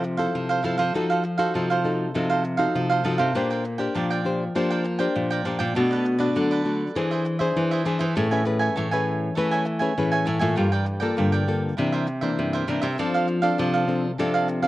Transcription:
Already playing: nylon-string guitar C3 F3
0.04 muted cavaquinho stroke
0.17 nylon-string guitar C4 E4 A4, cavaquinho A4 C5 F5
0.35 nylon-string guitar C3 F3
0.49 cavaquinho A4 C5 F5
0.63 nylon-string guitar F3 C4 E4 A4, cavaquinho E4 A4 C5 F5
0.78 nylon-string guitar F3, cavaquinho A4 C5 F5
0.94 nylon-string guitar F3 D#4 F#4 A4, cavaquinho D#4 A4 C5 F5
1.10 cavaquinho A4 C5 F5
1.24 muted cavaquinho stroke
1.38 nylon-string guitar D#4 F#4 A4, cavaquinho A4 C5 F5
1.54 nylon-string guitar C3 F3, cavaquinho D#4 A4 C5 F5
1.70 cavaquinho A4 C5 F5
1.84 nylon-string guitar D#4 F#4 A4
2.14 nylon-string guitar C3 F3 D#4 F#4 A4, cavaquinho D#4 A4 C5 F5
2.30 cavaquinho A4 C5 F5
2.44 muted cavaquinho stroke
2.57 nylon-string guitar D#4 F#4 A4, cavaquinho A4 C5 F5
2.75 nylon-string guitar C3 F3
2.90 cavaquinho A4 C5 F5
3.04 nylon-string guitar F3 D#4 F#4 A4, cavaquinho D#4 A4 C5 F5
3.18 nylon-string guitar C3, cavaquinho A4 C5 F5
3.35 nylon-string guitar A#2 A#3 D4 G4 C5, cavaquinho D4 A#4 D5 G5
3.50 cavaquinho A#4 D5 G5
3.64 muted cavaquinho stroke
3.78 nylon-string guitar D4 G4 C5, cavaquinho A#4 D5 G5
3.95 nylon-string guitar A#2 F3, cavaquinho D4 A#4 D5 G5
4.10 cavaquinho A#4 D5 G5
4.25 nylon-string guitar D4 G4 C5
4.55 nylon-string guitar F3 A#3 D4 G4 C5, cavaquinho D4 A#4 D5 G5
4.70 cavaquinho A#4 D5 G5
4.84 muted cavaquinho stroke
4.99 nylon-string guitar D4 G4 C5, cavaquinho A#4 D5 G5
5.16 nylon-string guitar A#2 F3
5.30 cavaquinho A#4 D5 G5
5.45 nylon-string guitar A#2 D4 G4 C5, cavaquinho D4 A#4 D5 G5
5.59 nylon-string guitar A#2, cavaquinho A#4 D5 G5
5.75 nylon-string guitar B2 A3 D4 F#4, cavaquinho D4 A4 B4 D5
5.91 cavaquinho A4 B4 D5
6.05 muted cavaquinho stroke
6.19 nylon-string guitar A3 D4 F#4, cavaquinho A4 B4 D5
6.35 nylon-string guitar D3 F#3, cavaquinho D4 A4 B4 D5
6.51 cavaquinho A4 B4 D5
6.65 nylon-string guitar A3 D4 F#4
6.95 nylon-string guitar E3 D4 G#4 C5, cavaquinho D4 G#4 C5 E5
7.11 cavaquinho G#4 C5 E5
7.25 muted cavaquinho stroke
7.39 nylon-string guitar D4 G#4 C5, cavaquinho G#4 C5 E5
7.56 nylon-string guitar E3
7.71 cavaquinho G#4 C5 E5
7.85 nylon-string guitar E3 D4 G#4 C5, cavaquinho D4 G#4 C5 E5
7.99 nylon-string guitar E3, cavaquinho G#4 C5 E5
8.15 nylon-string guitar A2 A3 C#4 G#4 B4, cavaquinho A4 C#5 E5 G#5
8.31 nylon-string guitar C#4 G#4 B4, cavaquinho C#5 E5 G#5
8.45 nylon-string guitar C#4 G#4 B4, muted cavaquinho stroke
8.59 cavaquinho C#5 E5 G#5
8.76 nylon-string guitar A2 E3, cavaquinho A4 C#5 E5 G#5
8.91 nylon-string guitar C#4 G#4 B4, cavaquinho C#5 E5 G#5
9.35 nylon-string guitar E3 A3 C#4 G#4 B4, cavaquinho A4 C#5 E5 G#5
9.51 cavaquinho C#5 E5 G#5
9.65 muted cavaquinho stroke
9.79 nylon-string guitar C#4 G#4 B4, cavaquinho C#5 E5 G#5
9.98 nylon-string guitar A2 E3 C#4 G#4 B4
10.12 cavaquinho C#5 E5 G#5
10.25 nylon-string guitar A2, cavaquinho A4 C#5 E5 G#5
10.39 nylon-string guitar A2 A#3 F4 A4, cavaquinho C#5 E5 G#5
10.56 nylon-string guitar G2 G3, cavaquinho F4 A#4 D5 G5
10.72 cavaquinho A#4 D5 G5
10.86 muted cavaquinho stroke
11.00 nylon-string guitar A#3 F4 A4, cavaquinho A#4 D5 G5
11.17 nylon-string guitar G2 D3, cavaquinho F4 A#4 D5 G5
11.32 cavaquinho A#4 D5 G5
11.48 nylon-string guitar A#3 F4 A4
11.77 nylon-string guitar C3 E3 A#3 D4, cavaquinho E4 A#4 C5 E5
11.92 cavaquinho A#4 C5 E5
12.07 muted cavaquinho stroke
12.21 nylon-string guitar E3 A#3 D4, cavaquinho A#4 C5 E5
12.39 nylon-string guitar G2 C3
12.53 cavaquinho A#4 C5 E5
12.68 nylon-string guitar C3 E3 A#3 D4, cavaquinho E4 A#4 C5 E5
12.82 nylon-string guitar C3, cavaquinho A#4 C5 E5
12.98 nylon-string guitar F3 C4 D4 A4, cavaquinho D4 A4 D5 F5
13.14 cavaquinho A4 D5 F5
13.27 muted cavaquinho stroke
13.42 nylon-string guitar C4 D4 A4, cavaquinho A4 D5 F5
13.58 nylon-string guitar C3 F3, cavaquinho D4 A4 D5 F5
13.74 cavaquinho A4 D5 F5
13.88 nylon-string guitar C4 D4 A4
14.18 nylon-string guitar C3 F3 C4 D4 A4, cavaquinho D4 A4 D5 F5
14.34 cavaquinho A4 D5 F5
14.48 muted cavaquinho stroke
14.62 nylon-string guitar C4 D4 A4, cavaquinho A4 D5 F5

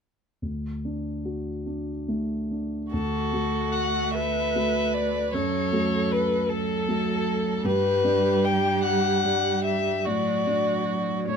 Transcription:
0.42 grand piano D2
0.85 grand piano D4
1.25 grand piano F#4
1.66 grand piano D4
2.08 grand piano A3
2.51 grand piano D4
2.92 grand piano D2, cello A3, viola F#4, violin A4
3.33 grand piano A3 F#4 A4
3.72 violin F#5
4.14 viola B4, violin E5
4.55 grand piano A3 F#4 A4
4.94 violin D5
5.33 grand piano F#2, cello F#3, viola A4, violin C#5
5.72 grand piano A3 F#4 A4
6.12 violin B4
6.49 cello F#3, viola A4, violin A4
6.88 grand piano A3 F#4 A4
7.64 grand piano G2, cello G3, viola G4, violin B4
8.04 grand piano G3 D4 D5
8.45 violin G5
8.84 violin F#5
9.25 grand piano G3 D4 D5
9.64 violin E5
10.05 grand piano A2, cello F#3, viola F#4, violin D5
10.46 grand piano F#3 D4 D5
11.28 grand piano A2, cello A3, viola C#5

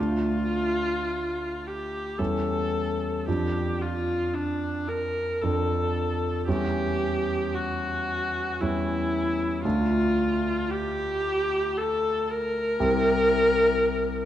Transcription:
0.00 grand piano D2 A3 D4 F4, viola F4
1.67 viola G4
2.19 grand piano E2 G3 C#4 E4, viola A4
3.28 grand piano F2 F3 D4, viola G4
3.81 viola F4
4.34 viola D4
4.88 viola A#4
5.41 grand piano F2 F3 D4, viola A4
6.48 grand piano E2 G3 C#4 E4, viola G4
7.54 viola F#4
8.61 grand piano E2 G3 C#4 E4, viola E4
9.64 grand piano D2 A3 D4 F4, viola F4
10.70 viola G4
11.77 viola A4
12.29 viola A#4
12.79 grand piano C2 C4 E4 G4

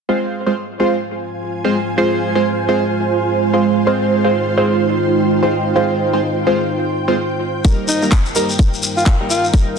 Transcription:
0.08 analog synth pad G#3 F4 C5, synth stab G#3 C4 F4 C5, ambient pad F4
0.47 synth stab G#3 C4 F4 C5
0.69 ambient pad G#5
0.78 synth stab G#3 C4 F4 C5, ambient pad C5
1.65 synth stab G#3 C4 F4 C5
1.98 synth stab G#3 C4 F4 C5
2.35 synth stab G#3 C4 F4 C5
2.69 synth stab G#3 C4 F4 C5
3.54 synth stab G#3 C4 F4 C5
3.84 synth stab G#3 C4 F4 C5, analog synth pad D#4, ambient pad G5
4.24 synth stab G#3 C4 F4 C5
4.57 synth stab G#3 C4 F4 C5
5.43 synth stab G#3 C4 F4 C5
5.76 synth stab G#3 C4 F4 C5
6.13 synth stab G#3 C4 F4 C5
6.47 synth stab G#3 C4 F4 C5
7.08 synth stab G#3 C4 F4 C5
7.65 analog synth pad G3 D#4 A#4, synth stab G3 A#3 D#4 A#4, ambient pad D#4, kick, shekere
7.88 alto saxophone D#4, shekere
8.02 synth stab G3 A#3 D#4 A#4, shekere
8.12 kick, clap, shekere
8.16 ambient pad A#4
8.26 shekere
8.35 synth stab G3 A#3 D#4 A#4, shekere
8.49 shekere
8.59 kick, shekere
8.74 shekere
8.83 shekere
8.97 alto saxophone F4, shekere
9.06 alto saxophone F4, kick, clap
9.20 synth stab G3 A#3 D#4 A#4
9.30 alto saxophone F4, shekere
9.44 shekere
9.54 synth stab G3 A#3 D#4 A#4, kick, shekere

